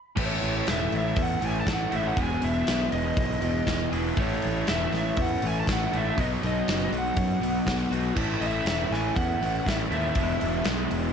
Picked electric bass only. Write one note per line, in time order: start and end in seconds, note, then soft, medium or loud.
0.17 0.36 A1 medium
0.43 0.61 A1 medium
0.68 0.87 E1 medium
0.94 1.12 A1 medium
1.17 1.36 E2 medium
1.42 1.61 A1 medium
1.67 1.85 A1 medium
1.93 2.11 A1 medium
2.17 2.36 E1 medium
2.43 2.61 E1 medium
2.69 2.87 B1 medium
2.93 3.11 E1 medium
3.18 3.36 B1 medium
3.42 3.61 E1 medium
3.68 3.86 E1 medium
3.92 4.10 E1 medium
4.17 4.36 A1 medium
4.45 4.63 A1 loud
4.69 4.87 E1 medium
4.92 5.11 A1 medium
5.18 5.36 E2 loud
5.44 5.62 A1 loud
5.68 5.86 A1 medium
5.93 6.11 A1 medium
6.18 6.36 B1 loud
6.43 6.61 B1 loud
6.69 6.86 F#1 medium
6.92 7.11 B1 medium
7.16 7.35 F#2 medium
7.40 7.59 B1 loud
7.67 7.85 B1 medium
7.91 8.10 B1 medium
8.16 8.35 A1 medium
8.41 8.60 A1 medium
8.65 8.84 E1 medium
8.91 9.10 A1 medium
9.17 9.35 E2 loud
9.41 9.60 A1 medium
9.67 9.85 A1 medium
9.91 10.09 D#2 medium
10.16 10.34 E1 medium
10.42 10.60 E1 medium
10.66 10.85 B1 medium
10.92 11.10 E1 medium